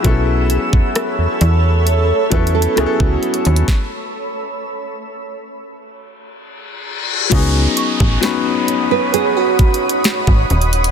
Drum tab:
CC |------------------------------------------------------------------------------------------------|------------------------------------------------------------------------------------------------|x-----------------------------------------------------------------------------------------------|
HH |x-----------x-----------x-----------x-----------x-----------x---x---x---x-----------x--x--x--x--|------------------------------------------------------------------------------------------------|x-----------x-----------x-----------x-----------x-----------x---x---x---x-----------x--x--x--x--|
SD |------------------------r-----------------------------------------------r-----------------------|o-----------------------------------------------------------------------------------------------|------------------------o-----------------------------------------------o-----------------------|
BD |o-----------------o-----------------------------------------o-----------------o-----------------|o-----------------------------------------------------------------------------------------------|o-----------------o-----------------------------------------o-----------------o-----------------|